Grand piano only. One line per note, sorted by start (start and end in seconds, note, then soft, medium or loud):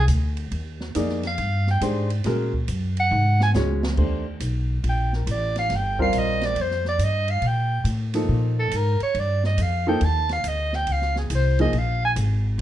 0.95 1.21 A#3 medium
0.95 1.21 D#4 medium
0.95 1.21 G#4 medium
0.95 1.21 D5 medium
1.82 2.07 G#3 medium
1.82 2.08 D4 medium
1.82 2.08 G4 medium
1.82 2.08 C5 medium
2.26 2.51 G#3 medium
2.26 2.51 C#4 medium
2.26 2.51 F#4 medium
2.26 2.51 A#4 medium
3.56 3.81 G#3 medium
3.56 3.81 C#4 medium
3.56 3.81 F#4 medium
3.56 3.81 C#5 medium
3.98 4.23 A3 medium
3.98 4.24 D4 soft
3.98 4.24 G4 soft
3.98 4.24 C5 medium
5.99 6.54 G3 medium
5.99 6.53 C4 medium
5.99 6.54 F4 medium
5.99 6.54 A#4 medium
8.14 8.69 F3 medium
8.14 8.69 A#3 medium
8.14 8.69 D#4 medium
8.14 8.69 A4 medium
9.87 9.99 F3 medium
9.87 10.00 A#3 medium
9.87 10.00 D#4 medium
9.87 10.00 A4 medium
11.59 11.72 F3 medium
11.59 11.72 A#3 medium
11.59 11.72 D#4 medium
11.59 11.72 G#4 medium